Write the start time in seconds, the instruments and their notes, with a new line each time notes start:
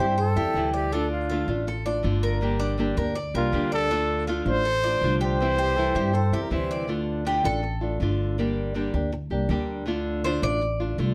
Already playing: trumpet C5
0.00 upright bass G2, nylon-string guitar G3 C4 E4, cuban tres G4
0.18 flute A4, cuban tres C5, muted nylon-string guitar stroke
0.36 upright bass E2, nylon-string guitar G3 C4 E4, cuban tres G4
0.54 upright bass D2, nylon-string guitar C3 E3 G3 C4 E4
0.74 flute G4, cuban tres D5
0.92 nylon-string guitar D3 A3 D4 F4, cuban tres D4, flute A4
1.11 flute F4
1.29 nylon-string guitar D3 A3 D4 F4, cuban tres F4
1.48 upright bass A1, nylon-string guitar A3 D4 F4
1.67 cuban tres A4, muted nylon-string guitar stroke
1.86 nylon-string guitar A3 D4 F4, cuban tres D5
2.03 upright bass G1, nylon-string guitar D3 A3 D4 F4
2.23 cuban tres A#4
2.41 nylon-string guitar D3 G3 A#3 D4 G4
2.60 cuban tres D4
2.78 nylon-string guitar D3 G3 A#3 D4 G4
2.97 upright bass D2, nylon-string guitar A#3 D4 G4, cuban tres A#4
3.15 cuban tres D5, muted nylon-string guitar stroke
3.34 upright bass C2, nylon-string guitar A#3 D4 G4, trumpet F4, cuban tres A#4
3.52 upright bass D2, nylon-string guitar D3 G3 A#3 D4 G4
3.72 trumpet A4, cuban tres D5
3.90 nylon-string guitar D3 A3 D4 F4, cuban tres D4
4.27 nylon-string guitar D3 A3 D4 F4, cuban tres F4
4.46 upright bass A1, nylon-string guitar A3 D4 F4, trumpet C5
4.65 cuban tres A4, muted nylon-string guitar stroke
4.83 nylon-string guitar A3 D4 F4, cuban tres D5
5.01 upright bass C2, nylon-string guitar D3 A3 D4 F4
5.21 cuban tres G4, trumpet C5
5.40 nylon-string guitar C3 E3 G3 C4 E4
5.58 cuban tres C4, flute G4
5.76 nylon-string guitar C3 E3 G3 C4 E4, flute A4
5.95 upright bass G2, nylon-string guitar G3 C4 E4, flute G4, cuban tres G4
6.13 flute A4, cuban tres C5, muted nylon-string guitar stroke
6.32 upright bass E2, nylon-string guitar G3 C4 E4, cuban tres G4
6.42 flute A#4
6.50 upright bass D2, nylon-string guitar C3 E3 G3 C4 E4, flute C5
6.71 cuban tres D5
6.88 nylon-string guitar D3 A3 D4 F4
7.25 nylon-string guitar D3 A3 D4 F4, cuban tres G4
7.44 upright bass A1, nylon-string guitar A3 D4 F4, cuban tres A4
7.62 muted nylon-string guitar stroke
7.81 nylon-string guitar A3 D4 F4
8.00 upright bass G1, nylon-string guitar D3 A3 D4 F4
8.38 nylon-string guitar D3 G3 A#3 D4 G4
8.74 nylon-string guitar D3 G3 A#3 D4 G4
8.94 upright bass D2, nylon-string guitar A#3 D4 G4
9.12 muted nylon-string guitar stroke
9.30 upright bass C2, nylon-string guitar A#3 D4 G4
9.49 upright bass D2, nylon-string guitar D3 G3 A#3 D4 G4
9.86 nylon-string guitar D3 A3 D4 F4
10.24 nylon-string guitar D3 A3 D4 F4, cuban tres C5
10.42 upright bass A1, nylon-string guitar A3 D4 F4, cuban tres D5
10.61 muted nylon-string guitar stroke
10.80 nylon-string guitar A3 D4 F4
10.98 upright bass C2, nylon-string guitar D3 A3 D4 F4